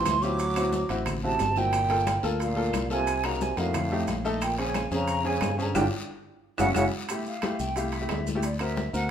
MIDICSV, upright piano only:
0, 0, Header, 1, 2, 480
1, 0, Start_track
1, 0, Key_signature, -1, "major"
1, 0, Tempo, 335008
1, 563, Time_signature, 4, 2, 24, 8
1, 13049, End_track
2, 0, Start_track
2, 0, Title_t, "Upright piano"
2, 0, Program_c, 0, 0
2, 0, Note_on_c, 0, 60, 86
2, 0, Note_on_c, 0, 64, 74
2, 0, Note_on_c, 0, 65, 81
2, 0, Note_on_c, 0, 67, 86
2, 185, Note_off_c, 0, 64, 0
2, 186, Note_off_c, 0, 60, 0
2, 189, Note_off_c, 0, 65, 0
2, 192, Note_off_c, 0, 67, 0
2, 329, Note_on_c, 0, 60, 78
2, 334, Note_on_c, 0, 65, 70
2, 335, Note_on_c, 0, 64, 76
2, 341, Note_on_c, 0, 67, 82
2, 566, Note_off_c, 0, 60, 0
2, 569, Note_off_c, 0, 64, 0
2, 569, Note_off_c, 0, 65, 0
2, 572, Note_off_c, 0, 67, 0
2, 806, Note_on_c, 0, 60, 81
2, 814, Note_on_c, 0, 64, 70
2, 818, Note_on_c, 0, 66, 93
2, 1141, Note_off_c, 0, 60, 0
2, 1145, Note_off_c, 0, 64, 0
2, 1147, Note_off_c, 0, 66, 0
2, 1286, Note_on_c, 0, 60, 92
2, 1291, Note_on_c, 0, 64, 84
2, 1293, Note_on_c, 0, 66, 98
2, 1621, Note_off_c, 0, 60, 0
2, 1623, Note_off_c, 0, 64, 0
2, 1624, Note_off_c, 0, 66, 0
2, 1771, Note_on_c, 0, 60, 73
2, 1775, Note_on_c, 0, 64, 72
2, 1783, Note_on_c, 0, 66, 88
2, 2103, Note_off_c, 0, 60, 0
2, 2106, Note_off_c, 0, 64, 0
2, 2109, Note_off_c, 0, 66, 0
2, 2247, Note_on_c, 0, 60, 77
2, 2248, Note_on_c, 0, 64, 71
2, 2252, Note_on_c, 0, 66, 81
2, 2485, Note_off_c, 0, 60, 0
2, 2486, Note_off_c, 0, 64, 0
2, 2488, Note_off_c, 0, 66, 0
2, 2715, Note_on_c, 0, 58, 79
2, 2721, Note_on_c, 0, 65, 69
2, 2728, Note_on_c, 0, 69, 89
2, 3055, Note_off_c, 0, 58, 0
2, 3059, Note_off_c, 0, 65, 0
2, 3062, Note_off_c, 0, 69, 0
2, 3193, Note_on_c, 0, 58, 96
2, 3201, Note_on_c, 0, 65, 83
2, 3209, Note_on_c, 0, 69, 97
2, 3535, Note_off_c, 0, 58, 0
2, 3538, Note_off_c, 0, 65, 0
2, 3542, Note_off_c, 0, 69, 0
2, 3663, Note_on_c, 0, 58, 75
2, 3670, Note_on_c, 0, 65, 74
2, 3675, Note_on_c, 0, 69, 90
2, 4010, Note_off_c, 0, 58, 0
2, 4013, Note_off_c, 0, 65, 0
2, 4016, Note_off_c, 0, 69, 0
2, 4157, Note_on_c, 0, 58, 77
2, 4164, Note_on_c, 0, 65, 76
2, 4168, Note_on_c, 0, 69, 84
2, 4400, Note_off_c, 0, 58, 0
2, 4404, Note_off_c, 0, 65, 0
2, 4406, Note_off_c, 0, 69, 0
2, 4647, Note_on_c, 0, 58, 73
2, 4651, Note_on_c, 0, 63, 67
2, 4658, Note_on_c, 0, 66, 84
2, 4982, Note_off_c, 0, 58, 0
2, 4984, Note_off_c, 0, 63, 0
2, 4987, Note_off_c, 0, 66, 0
2, 5131, Note_on_c, 0, 58, 84
2, 5142, Note_on_c, 0, 63, 70
2, 5142, Note_on_c, 0, 66, 86
2, 5368, Note_off_c, 0, 58, 0
2, 5373, Note_off_c, 0, 63, 0
2, 5373, Note_off_c, 0, 66, 0
2, 5612, Note_on_c, 0, 57, 89
2, 5615, Note_on_c, 0, 63, 75
2, 5620, Note_on_c, 0, 67, 86
2, 5944, Note_off_c, 0, 57, 0
2, 5946, Note_off_c, 0, 63, 0
2, 5948, Note_off_c, 0, 67, 0
2, 6083, Note_on_c, 0, 57, 92
2, 6091, Note_on_c, 0, 63, 92
2, 6097, Note_on_c, 0, 69, 106
2, 6324, Note_off_c, 0, 57, 0
2, 6328, Note_off_c, 0, 63, 0
2, 6331, Note_off_c, 0, 69, 0
2, 6564, Note_on_c, 0, 61, 74
2, 6567, Note_on_c, 0, 60, 80
2, 6574, Note_on_c, 0, 68, 96
2, 6900, Note_off_c, 0, 61, 0
2, 6902, Note_off_c, 0, 60, 0
2, 6905, Note_off_c, 0, 68, 0
2, 7036, Note_on_c, 0, 60, 75
2, 7043, Note_on_c, 0, 61, 77
2, 7045, Note_on_c, 0, 68, 87
2, 7376, Note_off_c, 0, 60, 0
2, 7380, Note_off_c, 0, 61, 0
2, 7381, Note_off_c, 0, 68, 0
2, 7504, Note_on_c, 0, 60, 81
2, 7514, Note_on_c, 0, 61, 80
2, 7522, Note_on_c, 0, 68, 95
2, 7850, Note_off_c, 0, 60, 0
2, 7855, Note_off_c, 0, 61, 0
2, 7859, Note_off_c, 0, 68, 0
2, 7996, Note_on_c, 0, 60, 81
2, 7998, Note_on_c, 0, 61, 78
2, 8005, Note_on_c, 0, 68, 89
2, 8232, Note_on_c, 0, 65, 97
2, 8233, Note_on_c, 0, 62, 97
2, 8235, Note_on_c, 0, 67, 98
2, 8240, Note_off_c, 0, 60, 0
2, 8241, Note_off_c, 0, 61, 0
2, 8245, Note_off_c, 0, 68, 0
2, 8390, Note_off_c, 0, 65, 0
2, 8391, Note_off_c, 0, 62, 0
2, 8392, Note_off_c, 0, 67, 0
2, 9448, Note_on_c, 0, 61, 93
2, 9450, Note_on_c, 0, 64, 93
2, 9454, Note_on_c, 0, 66, 90
2, 9600, Note_off_c, 0, 61, 0
2, 9601, Note_off_c, 0, 64, 0
2, 9604, Note_off_c, 0, 66, 0
2, 9685, Note_on_c, 0, 64, 92
2, 9687, Note_on_c, 0, 66, 90
2, 9690, Note_on_c, 0, 61, 91
2, 9839, Note_off_c, 0, 64, 0
2, 9840, Note_off_c, 0, 66, 0
2, 9842, Note_off_c, 0, 61, 0
2, 10172, Note_on_c, 0, 57, 75
2, 10182, Note_on_c, 0, 67, 78
2, 10183, Note_on_c, 0, 64, 64
2, 10504, Note_off_c, 0, 57, 0
2, 10509, Note_off_c, 0, 67, 0
2, 10510, Note_off_c, 0, 64, 0
2, 10640, Note_on_c, 0, 64, 74
2, 10642, Note_on_c, 0, 57, 80
2, 10651, Note_on_c, 0, 67, 82
2, 10979, Note_off_c, 0, 64, 0
2, 10980, Note_off_c, 0, 57, 0
2, 10984, Note_off_c, 0, 67, 0
2, 11115, Note_on_c, 0, 57, 81
2, 11123, Note_on_c, 0, 64, 77
2, 11127, Note_on_c, 0, 67, 90
2, 11372, Note_off_c, 0, 57, 0
2, 11376, Note_off_c, 0, 64, 0
2, 11378, Note_off_c, 0, 67, 0
2, 11473, Note_on_c, 0, 57, 67
2, 11475, Note_on_c, 0, 64, 64
2, 11484, Note_on_c, 0, 67, 69
2, 11815, Note_off_c, 0, 57, 0
2, 11816, Note_off_c, 0, 64, 0
2, 11820, Note_off_c, 0, 67, 0
2, 11965, Note_on_c, 0, 57, 85
2, 11975, Note_on_c, 0, 64, 74
2, 11980, Note_on_c, 0, 67, 96
2, 12085, Note_off_c, 0, 57, 0
2, 12090, Note_off_c, 0, 64, 0
2, 12093, Note_off_c, 0, 67, 0
2, 12327, Note_on_c, 0, 60, 74
2, 12329, Note_on_c, 0, 70, 82
2, 12331, Note_on_c, 0, 66, 66
2, 12662, Note_off_c, 0, 60, 0
2, 12663, Note_off_c, 0, 70, 0
2, 12664, Note_off_c, 0, 66, 0
2, 12799, Note_on_c, 0, 60, 79
2, 12799, Note_on_c, 0, 66, 63
2, 12804, Note_on_c, 0, 70, 83
2, 13049, Note_off_c, 0, 60, 0
2, 13049, Note_off_c, 0, 66, 0
2, 13049, Note_off_c, 0, 70, 0
2, 13049, End_track
0, 0, End_of_file